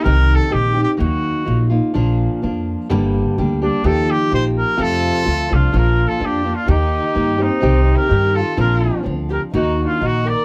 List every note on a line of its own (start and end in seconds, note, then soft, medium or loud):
0.03 0.36 C2 medium
0.03 0.52 C3 medium
0.03 0.48 D#3 medium
0.03 0.49 C4 medium
0.03 0.49 D#4 medium
0.03 0.50 G4 medium
0.03 0.36 A#4 loud
0.35 0.54 A4 medium
0.49 0.84 A#1 medium
0.49 0.75 D#3 medium
0.49 0.75 C4 medium
0.49 0.74 D#4 medium
0.49 0.73 G4 medium
0.49 0.82 G4 medium
0.75 0.98 C4 soft
0.75 0.97 D#4 soft
0.75 0.99 G4 soft
0.83 0.90 G4 medium
0.97 1.31 D#2 medium
0.97 1.46 D#3 medium
0.97 1.44 F#3 medium
0.97 1.45 A#3 medium
0.97 1.44 D#4 medium
0.97 1.67 F#4 medium
1.45 1.79 A#1 medium
1.45 1.70 F#3 soft
1.45 1.70 A#3 soft
1.45 1.70 D#4 medium
1.45 1.69 F4 soft
1.70 1.93 A#3 soft
1.70 1.94 D#4 soft
1.70 1.94 F4 medium
1.94 2.26 A#1 medium
1.94 2.42 A#2 medium
1.94 2.41 F3 medium
1.94 2.43 A#3 medium
1.94 2.42 D4 medium
1.94 2.42 F4 medium
2.42 2.74 F2 medium
2.42 2.89 F3 soft
2.42 2.89 A#3 medium
2.42 2.89 D4 medium
2.42 2.90 F4 soft
2.89 3.21 G1 medium
2.89 3.37 G2 medium
2.89 3.37 D3 medium
2.89 3.37 G3 medium
2.89 3.37 A#3 medium
2.89 3.37 D4 medium
2.89 3.37 G4 medium
3.38 3.68 D2 medium
3.38 3.61 G3 medium
3.38 3.61 A#3 medium
3.38 3.61 D4 medium
3.38 3.60 G4 medium
3.62 3.84 G3 soft
3.62 3.84 A#3 soft
3.62 3.84 D4 soft
3.62 3.87 D4 medium
3.62 3.84 G4 soft
3.84 4.15 D#2 medium
3.84 4.31 D#3 medium
3.84 4.31 F3 medium
3.84 4.31 A#3 medium
3.84 4.31 D#4 medium
3.84 4.32 G4 medium
3.84 4.12 A4 medium
4.11 4.32 G4 loud
4.31 4.62 A#1 medium
4.31 4.77 F3 soft
4.31 4.77 A#3 medium
4.31 4.78 D#4 medium
4.31 4.77 G4 medium
4.31 4.44 C5 medium
4.58 4.83 A#4 medium
4.77 5.26 F2 medium
4.77 5.10 F2 medium
4.77 5.26 C3 medium
4.77 5.23 F3 medium
4.77 5.24 A3 medium
4.77 5.24 C4 medium
4.77 5.25 F4 medium
4.77 5.51 F4 medium
4.81 5.55 A4 loud
5.25 5.48 D2 medium
5.25 5.50 F3 soft
5.25 5.50 A3 medium
5.25 5.49 C4 soft
5.25 5.49 F4 medium
5.50 5.72 C2 medium
5.50 5.72 F3 soft
5.50 5.73 A3 soft
5.50 5.73 C4 soft
5.50 5.75 D4 medium
5.50 5.73 F4 soft
5.50 5.79 F4 medium
5.72 6.05 A#1 medium
5.72 6.21 A#2 medium
5.72 6.18 F3 medium
5.72 6.19 A#3 medium
5.72 6.20 D4 medium
5.72 6.20 F4 medium
5.72 6.06 F4 medium
5.77 6.09 A#4 medium
6.07 6.22 F4 medium
6.07 6.27 A4 medium
6.20 6.52 F2 medium
6.20 6.45 F3 soft
6.20 6.44 A#3 soft
6.20 6.44 D4 soft
6.20 6.54 D4 medium
6.20 6.43 F4 medium
6.25 6.56 G4 medium
6.44 6.66 A#3 soft
6.44 6.67 D4 soft
6.44 6.68 F4 soft
6.55 6.71 D4 medium
6.55 6.71 F4 medium
6.66 6.99 D#2 medium
6.66 7.13 D#3 medium
6.66 7.14 A#3 medium
6.66 7.14 D#4 medium
6.66 7.15 G4 medium
6.66 7.44 G4 medium
6.72 7.42 D#4 medium
7.14 7.47 G2 medium
7.14 7.39 D#3 soft
7.14 7.38 A#3 medium
7.14 7.38 D#4 medium
7.14 7.37 G4 soft
7.38 7.62 A#3 soft
7.38 7.60 D#4 soft
7.38 7.61 G4 soft
7.42 7.96 C4 medium
7.42 7.98 D#4 medium
7.61 7.94 C2 medium
7.61 8.09 C3 medium
7.61 8.06 D#3 medium
7.61 8.07 C4 medium
7.61 8.08 D#4 medium
7.61 8.08 G4 medium
7.96 8.36 G4 medium
7.96 8.36 A#4 medium
8.08 8.41 G2 medium
8.08 8.56 D#3 medium
8.08 8.56 C4 soft
8.08 8.57 D#4 soft
8.08 8.57 G4 soft
8.35 8.58 F4 medium
8.35 8.58 A4 medium
8.57 8.89 A#1 medium
8.57 9.05 A#2 medium
8.57 9.02 F3 medium
8.57 9.02 C4 medium
8.57 9.02 D4 medium
8.57 9.03 F4 medium
8.57 8.99 F4 medium
8.57 9.00 A#4 medium
9.03 9.37 D2 medium
9.03 9.52 F3 soft
9.03 9.52 C4 soft
9.03 9.52 D4 soft
9.03 9.52 F4 medium
9.30 9.40 G4 medium
9.30 9.42 A#4 medium
9.53 9.85 D#2 medium
9.53 10.00 D#3 medium
9.53 10.01 A#3 medium
9.53 9.80 D#4 medium
9.53 10.01 D#4 medium
9.53 10.01 F#4 medium
9.53 9.83 F#4 medium
9.81 10.01 D4 medium
9.81 9.85 D#4 soft
9.81 9.88 F#4 medium
9.86 10.08 F4 medium
10.01 10.32 A#1 medium
10.01 10.45 D#3 soft
10.01 10.45 A#3 soft
10.01 10.25 D#4 medium
10.01 10.45 D#4 soft
10.01 10.45 F#4 soft
10.06 10.30 F#4 medium
10.26 10.45 A#4 medium
10.26 10.45 D5 medium